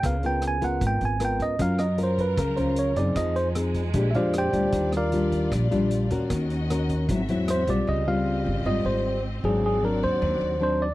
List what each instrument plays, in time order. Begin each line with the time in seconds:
0.03 upright bass C#2, nylon-string guitar C#3 B3 F4 A#4, tine electric piano F5, kick, cross-stick, closed hi-hat
0.23 nylon-string guitar B3 F4 A#4, tine electric piano G5, closed hi-hat
0.42 cross-stick, closed hi-hat
0.48 tine electric piano G#5
0.61 nylon-string guitar B3 F4 A#4, tine electric piano F#5, kick, closed hi-hat
0.81 upright bass G#1, nylon-string guitar G#2, kick, closed hi-hat
0.87 tine electric piano G5
1.01 upright bass G#1, closed hi-hat
1.05 tine electric piano G#5
1.20 nylon-string guitar B3 F4 A#4, cross-stick, closed hi-hat
1.25 tine electric piano G5
1.40 upright bass C#2, tine electric piano D#5, kick, closed hi-hat
1.58 upright bass F#2, string section F#3 F4 A#4, nylon-string guitar F#3 C#4 F4 A#4, tine electric piano F5, kick, closed hi-hat
1.78 tine electric piano D#5, cross-stick, closed hi-hat
1.98 nylon-string guitar C#4 F4 A#4, closed hi-hat
2.03 tine electric piano C5
2.18 tine electric piano B4, kick, closed hi-hat
2.37 upright bass C#2, nylon-string guitar C#3, tine electric piano A#4, kick, cross-stick, closed hi-hat
2.56 upright bass C#2, nylon-string guitar C#4 F4 A#4, tine electric piano C5, closed hi-hat
2.76 tine electric piano C#5, closed hi-hat
2.96 upright bass F#2, nylon-string guitar C4 D#4 G#4, tine electric piano D5, kick, closed hi-hat
3.16 upright bass F2, string section F3 G#3 D#4, nylon-string guitar F3, tine electric piano D#5, kick, cross-stick, closed hi-hat
3.36 tine electric piano C5, closed hi-hat
3.55 nylon-string guitar C4 D#4 G#4, cross-stick, closed hi-hat
3.74 kick, closed hi-hat
3.93 upright bass A#1, nylon-string guitar A#2 G#3 D4 G4, string section C4 G4 D5, kick, closed hi-hat
4.11 tine electric piano E5, closed hi-hat
4.15 upright bass F2, nylon-string guitar G#3 D4 G4, tine electric piano F4 C5 D5 F5
4.33 cross-stick, closed hi-hat
4.38 tine electric piano G4 C5 D5 G5
4.53 upright bass D2, nylon-string guitar G3 D4 F4, kick, closed hi-hat
4.72 upright bass D#2, nylon-string guitar D#3, string section G3 F4, kick, closed hi-hat
4.92 cross-stick, closed hi-hat
4.97 tine electric piano F4 A#4 D5 F5
5.12 nylon-string guitar G3 D4 F4, closed hi-hat
5.32 kick, closed hi-hat
5.52 upright bass A#1, nylon-string guitar A#2, kick, cross-stick, closed hi-hat
5.71 upright bass A#1, nylon-string guitar G3 D4 F4, closed hi-hat
5.91 closed hi-hat
6.10 upright bass D#2, nylon-string guitar C#4 F#4 A#4, kick, closed hi-hat
6.29 upright bass D#2, nylon-string guitar D#3, string section C#4 F#4 D#5, kick, cross-stick, closed hi-hat
6.50 closed hi-hat
6.70 nylon-string guitar C#4 F#4 A#4, cross-stick, closed hi-hat
6.89 kick, closed hi-hat
7.09 upright bass G#1, nylon-string guitar G#2 F#3 C4 E4, string section C4 F#4 E5, kick, closed hi-hat
7.28 upright bass E2, nylon-string guitar F#3 C4 E4, closed hi-hat
7.48 tine electric piano C5, cross-stick, closed hi-hat
7.67 upright bass B1, nylon-string guitar G3 C4 F4, tine electric piano D5, kick, closed hi-hat
7.87 upright bass C#2, nylon-string guitar C#3, string section C4 F4 G4 D#5, tine electric piano D#5
8.07 nylon-string guitar G3 C4 F4, tine electric piano F5
8.46 upright bass G#1
8.65 upright bass G#1, nylon-string guitar G#2 G3 C4 F4, tine electric piano D#5
8.85 upright bass G#1, tine electric piano C5
9.43 upright bass G#1, nylon-string guitar G#2 F#3 C4 D4, string section F#4 D5, tine electric piano G#4
9.66 tine electric piano G#4
9.83 nylon-string guitar F#3 C4 D4, tine electric piano A#4
10.03 upright bass D#2, tine electric piano C5
10.22 upright bass D#2, nylon-string guitar D#3
10.41 upright bass D#2
10.60 nylon-string guitar F#3 C4 D4, tine electric piano C5
10.82 tine electric piano D5